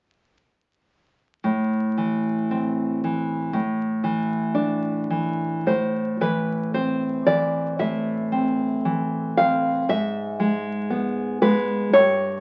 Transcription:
1.44 3.50 A2 soft
1.97 3.03 E3 soft
2.51 3.54 C4 soft
3.04 3.54 E3 soft
3.53 5.64 A2 medium
4.04 5.09 E3 soft
4.55 5.67 D4 soft
5.10 5.67 E3 soft
5.67 7.75 A2 soft
5.67 6.19 C5 medium
6.21 7.25 E3 soft
6.21 6.72 B4 medium
6.74 8.31 C4 soft
6.74 7.25 C5 medium
7.26 8.84 E3 soft
7.26 7.77 D5 medium
7.79 9.83 A2 soft
7.79 9.32 E5 medium
8.32 9.37 C4 soft
8.85 9.87 E3 soft
9.37 9.88 C4 soft
9.37 9.85 F5 medium
9.89 11.88 G#2 medium
9.89 11.36 E5 medium
10.40 11.40 G#3 soft
10.90 11.91 B3 soft
11.42 11.92 G#3 soft
11.42 11.90 B4 medium
11.93 12.40 G2 medium
11.93 12.40 C#5 medium

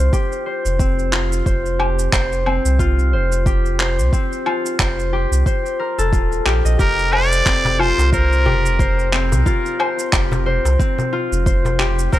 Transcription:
0.00 0.79 C4 loud
0.00 1.12 F4 medium
0.00 0.12 G4 medium
0.00 0.46 C5 medium
0.13 1.79 G4 loud
0.13 kick loud
0.13 shaker medium
0.32 shaker soft
0.46 1.46 C5 medium
0.65 1.42 F1 loud
0.65 shaker medium
0.79 2.46 C4 medium
0.79 kick loud
0.79 shaker medium
0.99 shaker soft
1.13 2.79 F4 medium
1.13 clap medium
1.32 shaker medium
1.46 2.08 F1 medium
1.46 2.12 C5 medium
1.46 kick loud
1.46 shaker medium
1.66 shaker soft
1.79 3.46 G4 loud
1.79 low woodblock medium
1.99 shaker medium
2.13 2.59 F1 loud
2.13 3.13 C5 medium
2.13 kick loud
2.13 clap medium
2.13 shaker medium
2.32 shaker soft
2.46 4.12 C4 loud
2.46 low woodblock medium
2.65 3.14 C2 medium
2.65 shaker medium
2.79 4.46 F4 loud
2.79 kick loud
2.79 shaker medium
2.99 shaker soft
3.12 4.00 F1 loud
3.12 3.79 C5 medium
3.32 shaker medium
3.46 5.12 G4 medium
3.46 kick loud
3.46 shaker medium
3.66 shaker soft
3.80 4.79 C5 medium
3.80 clap medium
3.98 4.10 C2 medium
3.98 shaker medium
4.13 7.13 C4 medium
4.13 kick loud
4.13 shaker medium
4.33 shaker soft
4.46 6.12 F4 medium
4.46 low woodblock medium
4.66 shaker medium
4.79 5.26 F1 loud
4.79 5.46 C5 medium
4.79 kick loud
4.79 clap medium
4.79 shaker medium
4.99 shaker soft
5.13 6.45 G4 medium
5.31 5.43 C2 medium
5.31 shaker medium
5.46 7.12 C5 medium
5.46 kick loud
5.46 shaker medium
5.66 shaker soft
5.79 6.04 A#4 medium
5.98 6.12 F1 loud
5.98 8.18 A4 medium
5.98 shaker medium
6.12 6.40 D#1 medium
6.12 7.79 F4 medium
6.12 kick loud
6.12 shaker medium
6.32 shaker soft
6.46 6.61 A#1 medium
6.46 6.78 G4 loud
6.46 clap medium
6.65 6.76 A#1 loud
6.65 8.43 D#5 medium
6.65 shaker medium
6.79 7.42 F1 loud
6.79 8.45 G4 loud
6.79 7.14 A#4 medium
6.79 kick medium
6.79 darbuka ka medium
6.79 shaker medium
6.99 shaker soft
7.12 8.12 C5 medium
7.12 7.81 D5 loud
7.12 darbuka ka medium
7.12 low woodblock medium
7.32 shaker medium
7.46 7.92 F1 loud
7.46 9.12 C4 medium
7.46 kick loud
7.46 clap medium
7.46 shaker soft
7.65 darbuka tek medium
7.65 darbuka dum medium
7.65 shaker soft
7.79 9.46 F4 loud
7.79 8.12 C5 medium
7.79 low woodblock medium
7.98 8.47 C2 medium
7.98 darbuka ka soft
7.98 darbuka tek soft
7.98 shaker medium
8.12 9.09 A#4 medium
8.12 8.79 C5 medium
8.12 kick loud
8.12 shaker medium
8.33 shaker soft
8.46 9.33 F1 loud
8.46 10.12 G4 medium
8.46 darbuka ka medium
8.46 darbuka dum medium
8.66 shaker medium
8.79 9.79 C5 medium
8.79 kick loud
8.79 shaker medium
8.99 shaker soft
9.12 10.79 C4 medium
9.12 clap medium
9.32 9.43 C2 medium
9.32 darbuka dum medium
9.32 shaker medium
9.46 11.12 F4 loud
9.46 kick medium
9.46 darbuka ka medium
9.46 shaker medium
9.66 shaker soft
9.79 10.46 C5 medium
9.79 darbuka ka medium
9.79 low woodblock medium
9.99 shaker medium
10.13 10.59 F1 loud
10.13 11.79 G4 medium
10.13 kick loud
10.13 clap medium
10.13 shaker medium
10.32 darbuka tek medium
10.32 darbuka dum loud
10.32 shaker soft
10.46 11.45 C5 medium
10.46 darbuka ka soft
10.65 10.77 C2 medium
10.65 darbuka ka soft
10.65 darbuka tek soft
10.65 shaker medium
10.79 12.19 C4 loud
10.79 kick loud
10.79 shaker medium
10.98 darbuka dum medium
10.98 shaker soft
11.13 12.19 F4 medium
11.32 12.08 F1 medium
11.32 shaker medium
11.46 12.12 C5 medium
11.46 kick loud
11.46 shaker medium
11.65 darbuka tek medium
11.65 darbuka dum medium
11.65 shaker soft
11.79 12.19 G4 loud
11.79 clap medium
11.99 shaker medium
12.12 12.19 F1 loud
12.12 12.19 A#4 medium
12.12 12.19 C5 medium
12.12 kick medium
12.12 darbuka ka medium
12.12 shaker soft

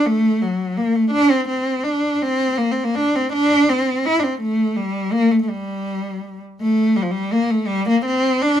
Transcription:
0.06 0.43 A3 loud
0.42 0.79 F#3 medium
0.77 0.97 A#3 medium
0.96 1.11 A3 medium
1.11 1.32 D4 loud
1.30 1.48 C4 medium
1.48 1.85 C4 medium
1.84 2.15 D4 medium
2.15 2.24 D4 medium
2.22 2.59 C4 medium
2.58 2.73 A#3 medium
2.71 2.86 C4 medium
2.84 2.97 A#3 medium
2.95 3.18 D4 medium
3.16 3.32 C4 medium
3.33 3.71 D4 loud
3.69 4.07 C4 medium
4.06 4.21 E4 loud
4.20 4.40 C4 medium
4.20 4.25 D4 medium
4.41 4.78 A3 medium
4.76 5.14 G3 medium
5.13 5.33 A#3 loud
5.31 5.41 A3 medium
5.42 5.51 A3 medium
5.50 6.41 G3 medium
6.62 6.98 A3 loud
6.96 7.04 G3 medium
7.03 7.13 F3 medium
7.11 7.34 G3 medium
7.33 7.52 A#3 loud
7.51 7.69 A3 medium
7.67 7.86 G3 loud
7.89 8.03 A#3 medium
8.06 8.44 C4 loud
8.42 8.60 D4 loud

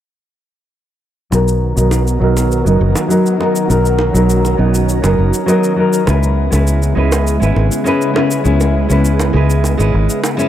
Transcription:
1.31 1.73 B1 medium
1.31 6.04 D#3 medium
1.31 1.73 F#3 medium
1.31 1.73 B3 medium
1.31 3.68 B3 medium
1.31 1.74 D#4 medium
1.31 6.04 F#4 medium
1.31 6.04 A#4 medium
1.31 1.75 A#4 medium
1.31 high bongo soft
1.31 shaker soft
1.48 shaker soft
1.75 2.18 B1 medium
1.75 2.17 F#3 medium
1.75 2.18 B3 medium
1.75 2.18 D#4 medium
1.75 2.19 A#4 medium
1.75 shaker medium
1.91 high bongo medium
1.91 shaker soft
2.07 shaker soft
2.20 2.62 B1 medium
2.20 2.62 F#3 medium
2.20 2.62 B3 medium
2.20 2.63 D#4 medium
2.20 2.63 A#4 medium
2.37 high bongo soft
2.37 shaker medium
2.52 shaker soft
2.64 2.78 F#1 medium
2.64 3.06 F#3 medium
2.64 3.07 B3 medium
2.64 3.07 D#4 medium
2.64 3.08 A#4 medium
2.64 shaker soft
2.81 2.93 F#1 medium
2.95 high bongo medium
2.95 shaker medium
3.08 3.36 F#3 medium
3.08 3.36 B3 medium
3.08 3.37 D#4 medium
3.08 3.37 A#4 medium
3.08 shaker soft
3.26 shaker soft
3.38 3.65 F#3 medium
3.38 3.66 B3 medium
3.38 3.67 D#4 medium
3.38 3.67 A#4 medium
3.38 high bongo soft
3.56 shaker medium
3.68 4.11 B1 medium
3.68 4.10 F#3 medium
3.68 4.11 B3 medium
3.68 6.05 C#4 medium
3.68 4.11 D#4 medium
3.68 4.12 A#4 medium
3.68 shaker soft
3.85 shaker soft
3.99 high bongo medium
4.13 4.55 B1 medium
4.13 4.55 F#3 medium
4.13 4.55 B3 medium
4.13 4.56 D#4 medium
4.13 4.56 A#4 medium
4.13 shaker medium
4.30 shaker soft
4.45 high bongo soft
4.45 shaker soft
4.57 5.00 B1 medium
4.57 4.99 F#3 medium
4.57 5.00 B3 medium
4.57 5.00 D#4 medium
4.57 5.01 A#4 medium
4.75 shaker medium
4.89 shaker soft
5.02 5.16 F#1 medium
5.02 5.44 F#3 medium
5.02 5.44 B3 medium
5.02 5.45 D#4 medium
5.02 5.46 A#4 medium
5.02 high bongo medium
5.02 shaker soft
5.19 5.31 F#1 medium
5.34 shaker medium
5.46 5.73 F#3 medium
5.46 5.74 B3 medium
5.46 5.74 D#4 medium
5.46 5.75 A#4 medium
5.46 high bongo soft
5.46 shaker soft
5.64 shaker soft
5.76 6.03 F#3 medium
5.76 6.04 B3 medium
5.76 6.04 D#4 medium
5.76 6.05 A#4 medium
5.93 shaker medium
6.06 6.48 C#2 medium
6.06 10.48 C#3 medium
6.06 6.48 G#3 medium
6.06 10.48 G#3 medium
6.06 10.48 B3 medium
6.06 6.48 C#4 medium
6.06 10.48 E4 medium
6.06 6.49 E4 medium
6.06 6.50 B4 medium
6.06 high bongo medium
6.06 shaker soft
6.23 shaker soft
6.51 6.93 C#2 medium
6.51 6.92 G#3 medium
6.51 6.93 C#4 medium
6.51 6.94 E4 medium
6.51 6.94 B4 medium
6.51 high bongo medium
6.51 shaker medium
6.67 shaker soft
6.83 shaker soft
6.95 7.37 C#2 medium
6.95 7.37 G#3 medium
6.95 7.38 C#4 medium
6.95 7.38 E4 medium
6.95 7.39 B4 medium
7.12 high bongo medium
7.12 shaker medium
7.27 shaker soft
7.40 7.54 G#1 medium
7.40 7.81 G#3 medium
7.40 7.82 C#4 medium
7.40 7.82 E4 medium
7.40 7.83 B4 medium
7.40 shaker soft
7.56 7.69 G#1 medium
7.56 high bongo soft
7.72 shaker medium
7.84 8.11 G#3 medium
7.84 8.12 C#4 medium
7.84 8.12 E4 medium
7.84 8.13 B4 medium
7.84 shaker soft
8.02 shaker soft
8.14 8.41 G#3 medium
8.14 8.41 C#4 medium
8.14 8.42 E4 medium
8.14 8.42 B4 medium
8.14 high bongo medium
8.31 shaker medium
8.44 8.86 C#2 medium
8.44 8.86 G#3 medium
8.44 8.86 C#4 medium
8.44 8.87 E4 medium
8.44 8.87 B4 medium
8.44 shaker soft
8.61 high bongo medium
8.61 shaker soft
8.88 9.31 C#2 medium
8.88 9.30 G#3 medium
8.88 9.31 C#4 medium
8.88 9.31 E4 medium
8.88 9.32 B4 medium
8.88 shaker medium
9.05 shaker medium
9.19 high bongo medium
9.19 shaker soft
9.33 9.75 C#2 medium
9.33 9.75 G#3 medium
9.33 9.75 C#4 medium
9.33 9.76 E4 medium
9.33 9.77 B4 medium
9.50 shaker medium
9.64 high bongo soft
9.64 shaker soft
9.77 9.91 G#1 medium
9.77 10.19 G#3 medium
9.77 10.20 C#4 medium
9.77 10.20 E4 medium
9.77 10.21 B4 medium
9.77 shaker soft
9.94 10.06 G#1 medium
10.10 shaker medium
10.24 high bongo medium
10.24 shaker soft
10.37 10.48 G#3 medium
10.37 10.48 C#4 medium
10.37 10.48 E4 medium
10.37 10.48 B4 medium
10.37 shaker soft

